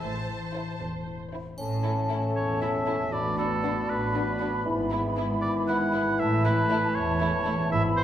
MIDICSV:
0, 0, Header, 1, 13, 480
1, 0, Start_track
1, 0, Key_signature, 3, "major"
1, 0, Tempo, 517688
1, 19, Time_signature, 6, 3, 24, 8
1, 2419, Tempo, 509771
1, 7532, End_track
2, 0, Start_track
2, 0, Title_t, "Flute section"
2, 0, Program_c, 0, 73
2, 1462, Note_on_c, 0, 81, 49
2, 2861, Note_off_c, 0, 81, 0
2, 2901, Note_on_c, 0, 83, 47
2, 5747, Note_off_c, 0, 83, 0
2, 5795, Note_on_c, 0, 81, 58
2, 7195, Note_off_c, 0, 81, 0
2, 7217, Note_on_c, 0, 83, 66
2, 7532, Note_off_c, 0, 83, 0
2, 7532, End_track
3, 0, Start_track
3, 0, Title_t, "Oboe"
3, 0, Program_c, 1, 68
3, 2186, Note_on_c, 1, 73, 53
3, 2405, Note_off_c, 1, 73, 0
3, 2426, Note_on_c, 1, 76, 61
3, 2908, Note_on_c, 1, 74, 73
3, 2922, Note_off_c, 1, 76, 0
3, 3142, Note_off_c, 1, 74, 0
3, 3148, Note_on_c, 1, 69, 60
3, 3634, Note_on_c, 1, 71, 58
3, 3648, Note_off_c, 1, 69, 0
3, 4352, Note_off_c, 1, 71, 0
3, 5063, Note_on_c, 1, 74, 68
3, 5171, Note_off_c, 1, 74, 0
3, 5312, Note_on_c, 1, 78, 77
3, 5797, Note_on_c, 1, 76, 74
3, 5811, Note_off_c, 1, 78, 0
3, 6029, Note_off_c, 1, 76, 0
3, 6036, Note_on_c, 1, 71, 79
3, 6509, Note_on_c, 1, 73, 69
3, 6523, Note_off_c, 1, 71, 0
3, 7223, Note_off_c, 1, 73, 0
3, 7229, Note_on_c, 1, 76, 90
3, 7335, Note_off_c, 1, 76, 0
3, 7466, Note_on_c, 1, 72, 85
3, 7532, Note_off_c, 1, 72, 0
3, 7532, End_track
4, 0, Start_track
4, 0, Title_t, "Violin section"
4, 0, Program_c, 2, 48
4, 9, Note_on_c, 2, 81, 57
4, 724, Note_off_c, 2, 81, 0
4, 1702, Note_on_c, 2, 69, 39
4, 1776, Note_off_c, 2, 69, 0
4, 1942, Note_on_c, 2, 69, 42
4, 2016, Note_off_c, 2, 69, 0
4, 2413, Note_on_c, 2, 69, 41
4, 2488, Note_off_c, 2, 69, 0
4, 2651, Note_on_c, 2, 69, 37
4, 2726, Note_off_c, 2, 69, 0
4, 3132, Note_on_c, 2, 66, 47
4, 3208, Note_off_c, 2, 66, 0
4, 3378, Note_on_c, 2, 66, 43
4, 3453, Note_off_c, 2, 66, 0
4, 3860, Note_on_c, 2, 66, 40
4, 3936, Note_off_c, 2, 66, 0
4, 4094, Note_on_c, 2, 66, 47
4, 4169, Note_off_c, 2, 66, 0
4, 4576, Note_on_c, 2, 64, 46
4, 4651, Note_off_c, 2, 64, 0
4, 4823, Note_on_c, 2, 64, 50
4, 4899, Note_off_c, 2, 64, 0
4, 5304, Note_on_c, 2, 64, 48
4, 5379, Note_off_c, 2, 64, 0
4, 5543, Note_on_c, 2, 64, 50
4, 5619, Note_off_c, 2, 64, 0
4, 6020, Note_on_c, 2, 64, 59
4, 6096, Note_off_c, 2, 64, 0
4, 6265, Note_on_c, 2, 64, 61
4, 6340, Note_off_c, 2, 64, 0
4, 6738, Note_on_c, 2, 64, 53
4, 6813, Note_off_c, 2, 64, 0
4, 6977, Note_on_c, 2, 64, 51
4, 7052, Note_off_c, 2, 64, 0
4, 7532, End_track
5, 0, Start_track
5, 0, Title_t, "Clarinet"
5, 0, Program_c, 3, 71
5, 1476, Note_on_c, 3, 69, 46
5, 2868, Note_off_c, 3, 69, 0
5, 2891, Note_on_c, 3, 66, 50
5, 4312, Note_off_c, 3, 66, 0
5, 4360, Note_on_c, 3, 64, 62
5, 7060, Note_off_c, 3, 64, 0
5, 7220, Note_on_c, 3, 64, 73
5, 7532, Note_off_c, 3, 64, 0
5, 7532, End_track
6, 0, Start_track
6, 0, Title_t, "Harp"
6, 0, Program_c, 4, 46
6, 0, Note_on_c, 4, 64, 33
6, 25, Note_on_c, 4, 45, 39
6, 262, Note_on_c, 4, 52, 34
6, 499, Note_off_c, 4, 64, 0
6, 510, Note_on_c, 4, 64, 29
6, 747, Note_on_c, 4, 69, 33
6, 979, Note_off_c, 4, 64, 0
6, 990, Note_on_c, 4, 64, 29
6, 1230, Note_on_c, 4, 60, 28
6, 1458, Note_off_c, 4, 45, 0
6, 1469, Note_on_c, 4, 45, 44
6, 1486, Note_off_c, 4, 52, 0
6, 1487, Note_off_c, 4, 60, 0
6, 1698, Note_off_c, 4, 69, 0
6, 1709, Note_on_c, 4, 69, 40
6, 1938, Note_off_c, 4, 64, 0
6, 1949, Note_on_c, 4, 64, 34
6, 2174, Note_off_c, 4, 69, 0
6, 2185, Note_on_c, 4, 69, 36
6, 2427, Note_on_c, 4, 52, 33
6, 2660, Note_off_c, 4, 69, 0
6, 2672, Note_on_c, 4, 69, 37
6, 2895, Note_off_c, 4, 45, 0
6, 2906, Note_on_c, 4, 45, 48
6, 2923, Note_off_c, 4, 64, 0
6, 2924, Note_off_c, 4, 52, 0
6, 3144, Note_on_c, 4, 71, 40
6, 3389, Note_on_c, 4, 62, 38
6, 3619, Note_off_c, 4, 71, 0
6, 3630, Note_on_c, 4, 71, 41
6, 3867, Note_on_c, 4, 57, 36
6, 4103, Note_off_c, 4, 71, 0
6, 4114, Note_on_c, 4, 71, 39
6, 4355, Note_on_c, 4, 44, 54
6, 4367, Note_off_c, 4, 57, 0
6, 4368, Note_off_c, 4, 45, 0
6, 4371, Note_off_c, 4, 69, 0
6, 4579, Note_off_c, 4, 71, 0
6, 4590, Note_on_c, 4, 71, 45
6, 4832, Note_on_c, 4, 64, 40
6, 5056, Note_off_c, 4, 71, 0
6, 5068, Note_on_c, 4, 71, 46
6, 5314, Note_on_c, 4, 56, 42
6, 5539, Note_off_c, 4, 71, 0
6, 5550, Note_on_c, 4, 71, 46
6, 5793, Note_on_c, 4, 45, 60
6, 5806, Note_off_c, 4, 71, 0
6, 5808, Note_off_c, 4, 44, 0
6, 5808, Note_off_c, 4, 56, 0
6, 5808, Note_off_c, 4, 62, 0
6, 6032, Note_on_c, 4, 69, 52
6, 6256, Note_off_c, 4, 64, 0
6, 6268, Note_on_c, 4, 64, 45
6, 6498, Note_off_c, 4, 69, 0
6, 6509, Note_on_c, 4, 69, 57
6, 6745, Note_on_c, 4, 52, 43
6, 6973, Note_off_c, 4, 69, 0
6, 6984, Note_on_c, 4, 69, 47
6, 7224, Note_on_c, 4, 44, 70
6, 7241, Note_off_c, 4, 52, 0
6, 7241, Note_off_c, 4, 69, 0
6, 7242, Note_off_c, 4, 45, 0
6, 7461, Note_on_c, 4, 71, 55
6, 7532, Note_off_c, 4, 44, 0
6, 7532, Note_off_c, 4, 64, 0
6, 7532, Note_off_c, 4, 71, 0
6, 7532, End_track
7, 0, Start_track
7, 0, Title_t, "Violin section"
7, 0, Program_c, 5, 48
7, 505, Note_on_c, 5, 64, 42
7, 506, Note_on_c, 5, 72, 40
7, 683, Note_off_c, 5, 64, 0
7, 684, Note_off_c, 5, 72, 0
7, 1225, Note_on_c, 5, 64, 39
7, 1226, Note_on_c, 5, 72, 35
7, 1405, Note_off_c, 5, 64, 0
7, 1405, Note_off_c, 5, 72, 0
7, 1696, Note_on_c, 5, 64, 39
7, 1771, Note_off_c, 5, 64, 0
7, 1939, Note_on_c, 5, 64, 40
7, 2013, Note_off_c, 5, 64, 0
7, 2424, Note_on_c, 5, 64, 38
7, 2499, Note_off_c, 5, 64, 0
7, 2658, Note_on_c, 5, 64, 35
7, 2733, Note_off_c, 5, 64, 0
7, 3145, Note_on_c, 5, 62, 45
7, 3220, Note_off_c, 5, 62, 0
7, 3379, Note_on_c, 5, 62, 39
7, 3454, Note_off_c, 5, 62, 0
7, 3866, Note_on_c, 5, 62, 40
7, 3941, Note_off_c, 5, 62, 0
7, 4108, Note_on_c, 5, 62, 38
7, 4183, Note_off_c, 5, 62, 0
7, 4594, Note_on_c, 5, 64, 49
7, 4669, Note_off_c, 5, 64, 0
7, 4835, Note_on_c, 5, 64, 50
7, 4910, Note_off_c, 5, 64, 0
7, 5310, Note_on_c, 5, 64, 52
7, 5386, Note_off_c, 5, 64, 0
7, 5552, Note_on_c, 5, 64, 43
7, 5627, Note_off_c, 5, 64, 0
7, 6031, Note_on_c, 5, 64, 55
7, 6106, Note_off_c, 5, 64, 0
7, 6270, Note_on_c, 5, 64, 56
7, 6345, Note_off_c, 5, 64, 0
7, 6747, Note_on_c, 5, 64, 52
7, 6822, Note_off_c, 5, 64, 0
7, 6980, Note_on_c, 5, 64, 53
7, 7055, Note_off_c, 5, 64, 0
7, 7532, End_track
8, 0, Start_track
8, 0, Title_t, "French horn section"
8, 0, Program_c, 6, 60
8, 1469, Note_on_c, 6, 61, 49
8, 1470, Note_on_c, 6, 57, 52
8, 2864, Note_off_c, 6, 61, 0
8, 2865, Note_off_c, 6, 57, 0
8, 2906, Note_on_c, 6, 59, 55
8, 2912, Note_on_c, 6, 62, 55
8, 4322, Note_off_c, 6, 62, 0
8, 4345, Note_on_c, 6, 64, 54
8, 5749, Note_off_c, 6, 59, 0
8, 5789, Note_on_c, 6, 57, 66
8, 7071, Note_off_c, 6, 57, 0
8, 7071, Note_off_c, 6, 64, 0
8, 7231, Note_on_c, 6, 64, 70
8, 7233, Note_on_c, 6, 59, 68
8, 7532, Note_off_c, 6, 59, 0
8, 7532, Note_off_c, 6, 64, 0
8, 7532, End_track
9, 0, Start_track
9, 0, Title_t, "Viola section"
9, 0, Program_c, 7, 48
9, 23, Note_on_c, 7, 72, 50
9, 1086, Note_off_c, 7, 72, 0
9, 1703, Note_on_c, 7, 61, 36
9, 1778, Note_off_c, 7, 61, 0
9, 1944, Note_on_c, 7, 61, 41
9, 2018, Note_off_c, 7, 61, 0
9, 2420, Note_on_c, 7, 61, 42
9, 2496, Note_off_c, 7, 61, 0
9, 2667, Note_on_c, 7, 61, 40
9, 2742, Note_off_c, 7, 61, 0
9, 3144, Note_on_c, 7, 59, 43
9, 3220, Note_off_c, 7, 59, 0
9, 3391, Note_on_c, 7, 59, 41
9, 3466, Note_off_c, 7, 59, 0
9, 3873, Note_on_c, 7, 59, 40
9, 3949, Note_off_c, 7, 59, 0
9, 4110, Note_on_c, 7, 59, 45
9, 4185, Note_off_c, 7, 59, 0
9, 4593, Note_on_c, 7, 59, 45
9, 4668, Note_off_c, 7, 59, 0
9, 4832, Note_on_c, 7, 59, 45
9, 4907, Note_off_c, 7, 59, 0
9, 5313, Note_on_c, 7, 59, 46
9, 5388, Note_off_c, 7, 59, 0
9, 5556, Note_on_c, 7, 59, 45
9, 5631, Note_off_c, 7, 59, 0
9, 6032, Note_on_c, 7, 57, 50
9, 6107, Note_off_c, 7, 57, 0
9, 6274, Note_on_c, 7, 57, 58
9, 6348, Note_off_c, 7, 57, 0
9, 6748, Note_on_c, 7, 57, 54
9, 6823, Note_off_c, 7, 57, 0
9, 6989, Note_on_c, 7, 57, 57
9, 7064, Note_off_c, 7, 57, 0
9, 7532, End_track
10, 0, Start_track
10, 0, Title_t, "Bassoon"
10, 0, Program_c, 8, 70
10, 1468, Note_on_c, 8, 61, 44
10, 2864, Note_off_c, 8, 61, 0
10, 2904, Note_on_c, 8, 62, 48
10, 4318, Note_off_c, 8, 62, 0
10, 4343, Note_on_c, 8, 52, 52
10, 7180, Note_off_c, 8, 52, 0
10, 7212, Note_on_c, 8, 52, 66
10, 7532, Note_off_c, 8, 52, 0
10, 7532, End_track
11, 0, Start_track
11, 0, Title_t, "Cello section"
11, 0, Program_c, 10, 48
11, 22, Note_on_c, 10, 45, 51
11, 600, Note_off_c, 10, 45, 0
11, 744, Note_on_c, 10, 40, 47
11, 1322, Note_off_c, 10, 40, 0
11, 1467, Note_on_c, 10, 45, 49
11, 2063, Note_off_c, 10, 45, 0
11, 2185, Note_on_c, 10, 40, 45
11, 2782, Note_off_c, 10, 40, 0
11, 2905, Note_on_c, 10, 45, 54
11, 3504, Note_off_c, 10, 45, 0
11, 3628, Note_on_c, 10, 45, 54
11, 4228, Note_off_c, 10, 45, 0
11, 4348, Note_on_c, 10, 44, 61
11, 4946, Note_off_c, 10, 44, 0
11, 5072, Note_on_c, 10, 44, 58
11, 5668, Note_off_c, 10, 44, 0
11, 5794, Note_on_c, 10, 45, 65
11, 6385, Note_off_c, 10, 45, 0
11, 6503, Note_on_c, 10, 40, 64
11, 7100, Note_off_c, 10, 40, 0
11, 7221, Note_on_c, 10, 44, 76
11, 7532, Note_off_c, 10, 44, 0
11, 7532, End_track
12, 0, Start_track
12, 0, Title_t, "Double bass section"
12, 0, Program_c, 11, 48
12, 24, Note_on_c, 11, 33, 51
12, 600, Note_off_c, 11, 33, 0
12, 740, Note_on_c, 11, 28, 40
12, 1320, Note_off_c, 11, 28, 0
12, 1467, Note_on_c, 11, 33, 50
12, 2063, Note_off_c, 11, 33, 0
12, 2186, Note_on_c, 11, 28, 49
12, 2783, Note_off_c, 11, 28, 0
12, 2904, Note_on_c, 11, 33, 50
12, 3503, Note_off_c, 11, 33, 0
12, 3617, Note_on_c, 11, 33, 56
12, 4223, Note_off_c, 11, 33, 0
12, 4341, Note_on_c, 11, 32, 61
12, 4943, Note_off_c, 11, 32, 0
12, 5058, Note_on_c, 11, 32, 56
12, 5661, Note_off_c, 11, 32, 0
12, 5792, Note_on_c, 11, 33, 67
12, 6384, Note_off_c, 11, 33, 0
12, 6500, Note_on_c, 11, 28, 58
12, 7098, Note_off_c, 11, 28, 0
12, 7220, Note_on_c, 11, 32, 85
12, 7532, Note_off_c, 11, 32, 0
12, 7532, End_track
13, 0, Start_track
13, 0, Title_t, "Drums"
13, 1463, Note_on_c, 9, 81, 32
13, 1556, Note_off_c, 9, 81, 0
13, 7532, End_track
0, 0, End_of_file